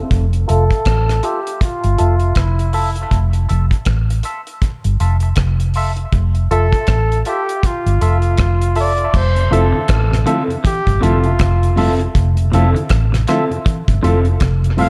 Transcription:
0.11 fingered electric bass F1, kick, closed hi-hat
0.33 closed hi-hat
0.48 fingered electric bass F1, synth stab F4 A4 E5, flugelhorn A4, closed hi-hat
0.71 kick, closed hi-hat
0.85 fingered electric bass A1, kick, cross-stick, closed hi-hat
1.09 cross-stick, closed hi-hat
1.23 synth stab F4 A4 E5, flugelhorn G4, closed hi-hat
1.47 closed hi-hat
1.61 flugelhorn F4, kick, closed hi-hat
1.84 fingered electric bass G1, closed hi-hat
1.98 fingered electric bass F1, synth stab F4 A4 E5, closed hi-hat
2.20 closed hi-hat
2.35 fingered electric bass F1, flugelhorn E4, kick, cross-stick, closed hi-hat
2.59 closed hi-hat
2.73 synth stab F4 A4 E5, open hi-hat
2.96 closed hi-hat
3.11 fingered electric bass F1, kick, closed hi-hat
3.33 closed hi-hat
3.48 fingered electric bass F1, synth stab F4 A4 E5, closed hi-hat
3.71 kick, closed hi-hat
3.85 fingered electric bass A1, kick, cross-stick, closed hi-hat
4.10 closed hi-hat
4.23 synth stab F4 A4 E5, closed hi-hat
4.47 closed hi-hat
4.62 kick, closed hi-hat
4.84 fingered electric bass G1, closed hi-hat
5.00 fingered electric bass F1, synth stab F4 A4 E5, closed hi-hat
5.20 synth stab A4 E5, closed hi-hat
5.36 fingered electric bass F1, kick, cross-stick, closed hi-hat
5.60 closed hi-hat
5.74 synth stab F4 A4 E5, open hi-hat
5.97 closed hi-hat
6.12 fingered electric bass F1, kick, closed hi-hat
6.35 closed hi-hat
6.51 fingered electric bass F1, synth stab F4 A4 E5, flugelhorn A4, closed hi-hat
6.73 kick, closed hi-hat
6.87 fingered electric bass A1, kick, cross-stick, closed hi-hat
7.12 closed hi-hat
7.25 synth stab F4 A4 E5, flugelhorn G4, closed hi-hat
7.49 closed hi-hat
7.63 flugelhorn F4, kick, closed hi-hat
7.86 fingered electric bass G1, closed hi-hat
8.01 fingered electric bass F1, synth stab F4 A4 E5, closed hi-hat
8.22 closed hi-hat
8.37 fingered electric bass F1, kick, cross-stick, closed hi-hat
8.61 closed hi-hat
8.75 synth stab F4 A4 E5, open hi-hat
8.80 flugelhorn D5
8.98 closed hi-hat
9.14 fingered electric bass F1, flugelhorn C5, kick, crash
9.36 tonewheel organ F2 C3, closed hi-hat
9.51 fingered electric bass F1, clean electric guitar C3 C4 E4 A4, tonewheel organ F3 A3 E4, synth stab F4 A4 E5, flugelhorn A4, closed hi-hat
9.73 tonewheel organ F2 C3, clean electric guitar D3
9.88 fingered electric bass A1, clean electric guitar E3, kick, cross-stick, closed hi-hat
10.10 tonewheel organ F2 C3, clean electric guitar C3, cross-stick, closed hi-hat
10.26 clean electric guitar D3 C4 E4 A4, tonewheel organ F3 A3 E4, synth stab F4 A4 E5, closed hi-hat
10.48 tonewheel organ F2 C3, closed hi-hat
10.64 clean electric guitar E3, flugelhorn G4, kick, closed hi-hat
10.86 fingered electric bass G1, tonewheel organ F2 C3, kick, closed hi-hat
11.00 fingered electric bass F1, clean electric guitar D3 C4 E4 A4, tonewheel organ F3 A3 E4, synth stab F4 A4 E5, flugelhorn F4, closed hi-hat
11.24 tonewheel organ F2 C3, synth stab A4 E5, closed hi-hat
11.39 fingered electric bass F1, clean electric guitar C3, kick, cross-stick, closed hi-hat
11.62 tonewheel organ F2 C3, closed hi-hat
11.76 clean electric guitar G2 C4 E4 A4, tonewheel organ F3 A3 E4, synth stab F4 A4 E5, open hi-hat
11.99 tonewheel organ F2 C3, closed hi-hat
12.15 fingered electric bass F1, kick, closed hi-hat
12.37 tonewheel organ F2 C3, closed hi-hat
12.52 fingered electric bass F1, clean electric guitar C3 C4 E4 A4, tonewheel organ F3 A3 E4, synth stab F4 A4 E5, closed hi-hat
12.75 tonewheel organ F2 C3, clean electric guitar D3, closed hi-hat
12.89 fingered electric bass A1, clean electric guitar E3, kick, cross-stick, closed hi-hat
13.12 tonewheel organ F2 C3, clean electric guitar C3, cross-stick, closed hi-hat
13.28 clean electric guitar D3 C4 E4 A4, tonewheel organ F3 A3 E4, synth stab F4 A4 E5, cross-stick, closed hi-hat
13.50 tonewheel organ F2 C3, closed hi-hat
13.66 clean electric guitar E3, kick, closed hi-hat
13.88 fingered electric bass G1, tonewheel organ F2 C3, kick, closed hi-hat
14.02 fingered electric bass F1, clean electric guitar D3 C4 E4 A4, tonewheel organ F3 A3 E4, synth stab F4 A4 E5, closed hi-hat
14.24 tonewheel organ F2 C3, closed hi-hat
14.40 fingered electric bass F1, clean electric guitar C3, kick, cross-stick, closed hi-hat
14.62 tonewheel organ F2 C3, closed hi-hat
14.77 clean electric guitar G2 C4 E4 A4, tonewheel organ F3 A3 E4, synth stab F4 A4 E5, open hi-hat
14.81 flugelhorn F5

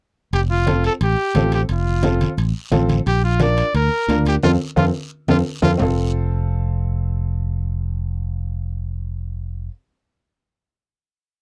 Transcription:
0.33 fingered electric bass F1, trumpet G4, high timbale, long guiro
0.50 trumpet F4, high conga
0.67 upright piano C4 F4 A4, high conga, high timbale, short guiro
0.84 trumpet A4, high timbale, short guiro
1.01 fingered electric bass A1, trumpet G4, high conga, high timbale, long guiro
1.35 fingered electric bass A1, upright piano C4 F4 A4, high conga, high timbale, low timbale, short guiro
1.52 trumpet G4, high timbale, short guiro
1.69 fingered electric bass F1, trumpet F4, high timbale, long guiro
1.86 high conga
2.03 upright piano C4 F4 A4, high conga, high timbale, short guiro
2.21 high conga, high timbale, short guiro
2.37 fingered electric bass A1, high conga, high timbale, long guiro
2.72 fingered electric bass A1, upright piano C4 F4 A4, high conga, high timbale, low timbale, short guiro
2.89 high conga, high timbale, short guiro
3.06 fingered electric bass A#1, trumpet G4, high timbale, long guiro
3.23 trumpet F4, high conga
3.39 upright piano D4 F4 A#4, trumpet D5, high conga, high timbale, short guiro
3.57 high timbale, short guiro
3.74 fingered electric bass D2, trumpet A#4, high conga, high timbale, long guiro
4.08 fingered electric bass D2, upright piano D4 F4 A#4, high conga, high timbale, short guiro
4.25 trumpet G4, high conga, high timbale, short guiro
4.43 fingered electric bass F2, upright piano C4 F4 A4, trumpet F4, high conga, high timbale, long guiro
4.76 fingered electric bass F2, upright piano C4 F4 A4, trumpet F4, high conga, high timbale, long guiro
5.28 fingered electric bass F2, upright piano C4 F4 A4, trumpet F4, high conga, high timbale, long guiro
5.62 fingered electric bass F2, upright piano C4 F4 A4, trumpet F4, high conga, high timbale
5.78 fingered electric bass F1, upright piano C4 F4, low conga, low timbale, long guiro
5.82 upright piano A4

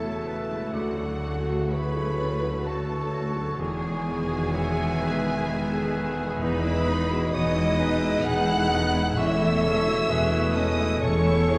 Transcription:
Already playing: double bass section E1, grand piano E2 A3 C#4 D#4 E4, cello section E2, harp C#3 E3 A3 E4 A4 E5 B5 C#6, viola section C#3 A3, french horn section A3 E4, flute section A4, violin section A4 A5, clarinet C#5, cor anglais E5
0.04 grand piano F#4
0.27 grand piano E4, clarinet B4
0.50 grand piano G#3, harp E4
0.73 grand piano D2, double bass section D2, cello section D2, harp D3, flute section F#4, violin section F#4 F#5, clarinet A4, cor anglais D5
0.97 grand piano F#3, harp F#3
1.22 harp C#4, clarinet A4, grand piano A4
1.47 harp A3, grand piano G#4
1.71 grand piano A3, harp F#4, clarinet G#4, flute section B4, violin section B4 B5, cor anglais C#5
1.96 grand piano F#3, harp C#5
2.20 grand piano C#4, harp A5
2.43 grand piano F#3, harp F#5
2.65 clarinet F#4, flute section A4, violin section A4 A5, grand piano A4, cor anglais C#5, harp A5
2.89 grand piano B4, harp C#5
3.12 harp F#4, clarinet F#4, grand piano A4
3.36 grand piano F#3, harp A4
3.59 double bass section E1, grand piano E2, cello section E2, viola section D#3 G#3, harp E3, french horn section G#3 B3, flute section G#4, clarinet G#4, violin section G#4 G#5
3.82 harp B3, grand piano B3
4.06 harp D#3, grand piano G#4
4.31 grand piano F#4
4.54 grand piano G#4, harp B4, clarinet C#5, cor anglais E5
4.78 grand piano B3
5.01 grand piano D#3, clarinet B4, harp G#5
5.26 grand piano B3, harp B5
5.48 grand piano G#4, clarinet B4, cor anglais E5, harp G#5
5.72 grand piano A4
5.96 grand piano G#4, harp B4
6.19 grand piano B3
6.41 double bass section E1, grand piano E2, cello section E2, harp E3, french horn section G#3 D#4, viola section B3 D#4, clarinet G#4, flute section B4, violin section B4 B5, cor anglais D#5
6.64 viola section G#3 E4, grand piano B3, harp B3
6.87 viola section B3 D#4, harp D#4, grand piano G#4
7.11 viola section G#3 E4, grand piano F#4
7.33 double bass section E1, cello section E2, viola section B3 D#4, grand piano G#4, harp B4, cor anglais B4, clarinet C#5, flute section D#5, violin section D#5 D#6
7.56 viola section G#3 E4, grand piano B3, harp D#5
7.79 viola section B3 D#4, grand piano D#4, clarinet B4, harp G#5
8.01 viola section G#3 E4, grand piano B3, harp B5
8.24 double bass section E1, cello section E2, viola section B3 D#4, grand piano G#4, clarinet G#4, cor anglais B4, flute section F#5, violin section F#5 F#6, harp G#5
8.47 viola section G#3 E4, grand piano A4, harp D#5
8.70 viola section B3 D#4, grand piano G#4, harp B4
8.93 viola section G#3 E4, grand piano B3, harp E4
9.16 double bass section E1, grand piano E2, cello section E2, french horn section E3 E4, harp E3, viola section G#3 C#4, clarinet A4, cor anglais C#5, violin section E5 E6, flute section E5
9.39 viola section A3 E4, harp A3, grand piano A3
9.62 harp C#3, viola section G#3 C#4, grand piano A4, cor anglais C#5
9.86 viola section A3 E4, grand piano F#4
10.09 double bass section E1, cello section E2, viola section G#3 C#4, grand piano G#4, cor anglais G#4, clarinet B4
10.32 viola section A3 E4, grand piano A3, harp C#6
10.55 viola section G#3 C#4, grand piano C#4, cor anglais A4, flute section D#5, violin section D#5 D#6, harp G#5
10.79 grand piano A3, viola section A3 E4, harp E5
11.02 double bass section E1, cello section E2, viola section G#3 C#4, grand piano A4, clarinet A4, flute section C#5, violin section C#5 C#6, harp G#5
11.25 viola section A3 E4, grand piano A4
11.48 viola section G#3 C#4, grand piano E4, clarinet G#4

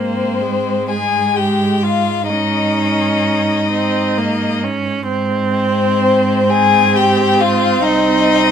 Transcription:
Already playing: cello G#2, viola A#3, violin C4 C5
0.42 viola G#3
0.89 violin G#4 G#5
1.36 violin G4 G5
1.83 violin F4 F5
2.29 viola C#4, violin D#4 D#5
3.71 viola C4
4.17 viola A#3
4.64 viola C#4
5.08 cello G#2, viola C4
5.54 violin C4 C5
6.49 viola C4, violin G#4 G#5
6.96 violin G4 G5
7.40 violin F4 F5
7.84 cello C2, violin D#4 D#5

